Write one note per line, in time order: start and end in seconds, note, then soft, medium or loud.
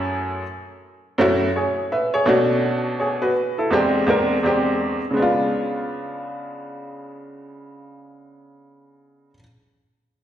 0.00 0.41 F#2 medium
0.00 0.41 A3 medium
0.00 0.42 C#4 medium
0.00 0.42 E4 medium
0.00 0.42 G#4 medium
1.18 1.47 F#2 medium
1.18 1.47 A3 medium
1.18 1.47 C#4 medium
1.18 1.48 E4 medium
1.18 1.48 F#4 medium
1.56 1.90 G#4 soft
1.56 1.90 C#5 medium
1.92 2.13 B4 medium
1.92 2.13 E5 medium
2.14 2.48 G#4 soft
2.14 2.48 C#5 medium
2.26 3.30 B2 medium
2.26 3.30 A3 medium
2.26 3.31 C#4 medium
2.26 3.31 D4 medium
2.26 3.00 F#4 medium
3.00 3.21 G#4 soft
3.00 3.21 C#5 soft
3.22 3.56 F#4 medium
3.22 3.56 B4 medium
3.58 3.93 E4 soft
3.58 3.93 A4 medium
3.70 4.02 E2 medium
3.70 4.02 G#3 medium
3.70 4.03 C4 medium
3.70 4.03 D4 medium
3.70 4.03 G4 medium
4.07 4.35 E2 medium
4.07 4.36 G#3 medium
4.07 4.36 C4 medium
4.07 4.36 D4 medium
4.07 4.37 A#4 medium
4.43 4.98 E2 medium
4.43 4.99 G#3 medium
4.43 4.99 C4 medium
4.43 4.99 D4 medium
4.43 5.00 G4 medium
5.11 9.30 C#3 medium
5.11 9.33 G#3 medium
5.17 9.35 B3 medium
5.17 9.38 D4 medium
5.22 9.41 F4 medium